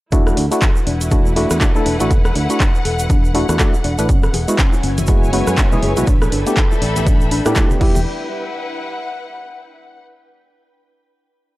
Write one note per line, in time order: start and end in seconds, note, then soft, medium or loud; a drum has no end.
0.12 0.32 E1 loud
0.12 0.46 A3 loud
0.12 0.46 D4 loud
0.12 0.19 D4 loud
0.12 4.71 E4 medium
0.12 0.46 E4 loud
0.12 0.46 F#4 loud
0.12 kick loud
0.12 closed hi-hat medium
0.12 shaker medium
0.27 cross-stick medium
0.27 shaker soft
0.37 0.48 D2 medium
0.37 0.44 D4 medium
0.37 open hi-hat loud
0.51 0.63 A3 loud
0.51 0.63 D4 loud
0.51 0.63 E4 medium
0.51 0.64 F#4 loud
0.51 4.72 B4 medium
0.51 closed hi-hat medium
0.51 shaker medium
0.62 0.73 A4 medium
0.62 kick loud
0.62 clap loud
0.62 closed hi-hat medium
0.62 shaker medium
0.76 shaker soft
0.80 4.89 F#5 loud
0.87 1.45 E1 medium
0.87 0.94 D4 loud
0.87 open hi-hat loud
1.01 closed hi-hat medium
1.01 shaker medium
1.11 1.34 A3 medium
1.11 1.34 D4 medium
1.11 1.19 D4 medium
1.11 1.34 E4 medium
1.11 1.34 F#4 medium
1.11 kick loud
1.11 closed hi-hat medium
1.11 shaker medium
1.26 shaker soft
1.36 1.72 A3 loud
1.36 1.72 D4 medium
1.36 1.72 E4 medium
1.36 1.72 F#4 loud
1.36 1.47 A4 medium
1.36 open hi-hat loud
1.50 1.58 E2 medium
1.50 cross-stick medium
1.50 closed hi-hat medium
1.50 shaker medium
1.61 1.68 D4 loud
1.61 kick loud
1.61 clap loud
1.61 closed hi-hat medium
1.61 shaker medium
1.75 1.97 A3 medium
1.75 1.97 D4 medium
1.75 1.97 E4 medium
1.75 1.97 A4 medium
1.75 shaker soft
1.86 1.96 E1 medium
1.86 1.93 D4 medium
1.86 open hi-hat medium
2.00 2.08 A1 medium
2.00 2.12 A3 loud
2.00 2.12 D4 medium
2.00 2.12 E4 medium
2.00 2.12 F#4 loud
2.00 closed hi-hat medium
2.00 shaker medium
2.11 2.21 A4 medium
2.11 kick loud
2.11 closed hi-hat medium
2.11 shaker medium
2.25 cross-stick medium
2.25 shaker soft
2.35 2.46 D2 medium
2.35 2.43 D4 loud
2.35 open hi-hat loud
2.49 2.61 A3 medium
2.49 2.62 D4 medium
2.49 2.62 E4 medium
2.49 2.62 F#4 medium
2.49 closed hi-hat medium
2.49 shaker medium
2.60 2.67 D4 medium
2.60 kick loud
2.60 clap loud
2.60 closed hi-hat medium
2.60 shaker medium
2.75 shaker soft
2.85 3.43 E1 medium
2.85 2.96 A4 medium
2.85 open hi-hat medium
2.99 closed hi-hat medium
2.99 shaker medium
3.10 3.17 D4 loud
3.10 kick loud
3.10 closed hi-hat medium
3.10 shaker medium
3.25 shaker soft
3.34 3.47 A3 medium
3.34 3.47 D4 medium
3.34 3.42 D4 medium
3.34 3.47 E4 medium
3.34 3.47 F#4 loud
3.34 open hi-hat loud
3.49 3.57 E2 loud
3.49 3.58 A3 medium
3.49 3.58 D4 medium
3.49 3.58 E4 medium
3.49 3.58 F#4 medium
3.49 cross-stick medium
3.49 closed hi-hat medium
3.49 shaker medium
3.59 3.75 A3 medium
3.59 3.75 D4 medium
3.59 3.75 E4 medium
3.59 3.75 F#4 loud
3.59 3.70 A4 medium
3.59 kick loud
3.59 clap loud
3.59 closed hi-hat medium
3.59 shaker medium
3.74 shaker soft
3.84 3.95 E1 medium
3.84 3.91 D4 loud
3.84 open hi-hat medium
3.98 4.06 A1 medium
3.98 4.07 A3 medium
3.98 4.08 D4 medium
3.98 4.08 E4 medium
3.98 4.08 B4 loud
3.98 closed hi-hat medium
3.98 shaker medium
4.09 6.88 F#3 medium
4.09 4.16 C#4 medium
4.09 6.05 E4 medium
4.09 7.77 B4 medium
4.09 6.05 G#5 medium
4.09 kick loud
4.09 closed hi-hat medium
4.09 shaker medium
4.23 cross-stick medium
4.23 shaker soft
4.33 4.44 E1 medium
4.33 4.45 G#4 medium
4.33 open hi-hat loud
4.33 high conga medium
4.48 4.60 G#3 loud
4.48 4.60 B3 medium
4.48 4.60 E4 medium
4.48 4.60 F#4 loud
4.48 closed hi-hat medium
4.48 shaker medium
4.53 6.88 C#5 medium
4.58 4.66 C#4 loud
4.58 kick loud
4.58 clap loud
4.58 closed hi-hat medium
4.58 shaker medium
4.73 high bongo medium
4.73 shaker soft
4.83 5.41 F#1 medium
4.83 4.91 C#4 medium
4.83 open hi-hat medium
4.98 6.07 G#5 medium
4.98 closed hi-hat medium
4.98 high conga medium
4.98 shaker medium
5.07 5.30 G#3 medium
5.07 5.30 B3 medium
5.07 5.31 E4 medium
5.07 5.31 F#4 medium
5.07 5.19 G#4 medium
5.07 kick loud
5.07 closed hi-hat medium
5.07 shaker medium
5.23 shaker soft
5.32 5.68 G#3 loud
5.32 5.69 B3 medium
5.32 5.40 C#4 loud
5.32 5.69 E4 medium
5.32 5.69 F#4 loud
5.32 open hi-hat loud
5.47 5.55 F#2 loud
5.47 cross-stick medium
5.47 closed hi-hat medium
5.47 shaker medium
5.57 5.65 C#4 medium
5.57 kick loud
5.57 clap loud
5.57 closed hi-hat soft
5.57 shaker medium
5.72 5.93 G#3 medium
5.72 5.93 B3 medium
5.72 5.94 E4 medium
5.72 5.94 G#4 medium
5.72 high conga medium
5.72 low conga medium
5.72 shaker soft
5.83 5.93 F#1 loud
5.83 5.93 G#4 medium
5.83 open hi-hat medium
5.96 6.05 B1 medium
5.96 6.06 G#3 loud
5.96 6.06 B3 medium
5.96 6.06 E4 medium
5.96 6.06 F#4 loud
5.96 closed hi-hat medium
5.96 low conga medium
5.96 shaker medium
6.07 6.27 A1 loud
6.07 6.15 D4 loud
6.07 7.79 D4 medium
6.07 7.81 A4 loud
6.07 7.79 G5 medium
6.07 kick loud
6.07 closed hi-hat medium
6.07 shaker medium
6.22 cross-stick medium
6.22 shaker soft
6.32 6.43 G1 medium
6.32 6.39 D4 medium
6.32 open hi-hat loud
6.41 7.81 B5 medium
6.46 6.58 A3 medium
6.46 6.58 B3 medium
6.46 6.59 D4 medium
6.46 6.59 G4 medium
6.46 7.81 E5 medium
6.46 closed hi-hat medium
6.46 shaker medium
6.57 6.68 A4 medium
6.57 kick loud
6.57 clap loud
6.57 closed hi-hat soft
6.57 shaker medium
6.72 high bongo medium
6.72 shaker soft
6.82 7.40 A1 medium
6.82 6.89 D4 loud
6.82 open hi-hat loud
6.96 closed hi-hat medium
6.96 high conga medium
6.96 shaker medium
7.07 7.14 D4 medium
7.07 kick loud
7.07 closed hi-hat medium
7.07 shaker medium
7.21 shaker soft
7.31 7.36 D4 loud
7.31 open hi-hat loud
7.45 7.53 A2 medium
7.45 7.78 A3 loud
7.45 7.78 B3 medium
7.45 7.78 D4 medium
7.45 7.53 E4 medium
7.45 7.79 G4 loud
7.45 cross-stick medium
7.45 closed hi-hat medium
7.45 shaker medium
7.56 7.63 E4 medium
7.56 kick loud
7.56 clap loud
7.56 closed hi-hat medium
7.56 shaker medium
7.71 low conga medium
7.71 shaker soft
7.79 8.04 E1 medium
7.79 7.99 G3 medium
7.79 8.00 B3 medium
7.79 8.04 E4 loud
7.79 9.75 E4 medium
7.79 8.00 E4 medium
7.79 8.01 G4 loud
7.79 kick loud
7.79 crash medium
7.90 9.75 B4 medium
7.95 high conga loud
7.95 low conga medium
7.95 shaker medium
8.22 10.00 F#5 medium